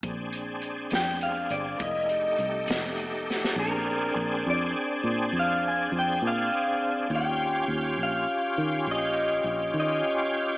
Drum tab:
HH |x-x-x-x-x-x-x-x-x-x-x---|------------------------|------------------------|
SD |------o-----------o---oo|------------------------|------------------------|
BD |o-----------o-----------|------------------------|------------------------|